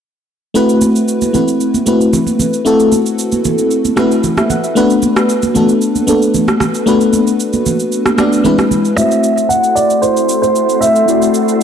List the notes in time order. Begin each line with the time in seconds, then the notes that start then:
0.54 A3 C4 E4 F#4 B4, shaker
0.69 shaker
0.81 high conga, shaker
0.96 shaker
1.08 shaker
1.21 high conga, shaker
1.33 A3 C4 E4 F#4 B4, high conga, low conga, shaker
1.48 shaker
1.60 shaker
1.74 high conga, shaker
1.86 A3 C4 E4 F#4 B4, high conga, shaker
2.01 shaker
2.13 low conga, shaker
2.27 high conga, shaker
2.40 high conga, low conga, shaker
2.53 shaker
2.65 A3 C4 E4 F#4 A4, shaker
2.80 shaker
2.92 high conga, shaker
3.06 shaker
3.19 shaker
3.32 high conga, shaker
3.45 high conga, low conga, shaker
3.58 shaker
3.71 shaker
3.85 high conga, shaker
3.96 A3 C4 E4 F#4 B4, cross-stick, high conga, shaker
4.11 shaker
4.24 low conga, shaker
4.37 E5, cross-stick, high conga, shaker
4.50 F#5, high conga, low conga, shaker
4.64 E5, shaker
4.75 A3 B3 D4 F#4 B4, shaker
4.90 shaker
5.02 high conga, shaker
5.16 cross-stick, shaker
5.29 shaker
5.42 high conga, shaker
5.54 A3 B3 D4 F#4 A4, high conga, low conga, shaker
5.69 shaker
5.81 shaker
5.96 high conga, shaker
6.07 A3 B3 D4 F#4 A4, high conga, shaker
6.22 shaker
6.34 low conga, shaker
6.48 cross-stick, high conga, shaker
6.60 cross-stick, high conga, low conga, shaker
6.74 shaker
6.86 A3 B3 D4 F#4 B4, shaker
7.01 shaker
7.13 high conga, shaker
7.27 shaker
7.40 shaker
7.53 high conga, shaker
7.66 high conga, low conga, shaker
7.79 shaker
7.92 shaker
8.06 cross-stick, high conga, shaker
8.18 A3 B3 D4 F#4 D5, cross-stick, high conga, shaker
8.33 shaker
8.44 G#3 C4 D4 E4 B4, low conga, shaker
8.58 cross-stick, high conga, shaker
8.71 high conga, low conga, shaker
8.85 shaker
8.95 A3 C4 E4 F#4 C5 E5, shaker
9.11 shaker
9.23 shaker
9.38 shaker
9.49 F#5, shaker
9.64 shaker
9.75 D5, shaker
9.90 shaker
10.02 C5, shaker
10.17 shaker
10.29 shaker
10.42 C5, shaker
10.56 shaker
10.69 shaker
10.81 E5, shaker
10.96 shaker
11.06 A3 C4 E4 F#4, shaker
11.10 D5
11.22 shaker
11.34 shaker
11.48 shaker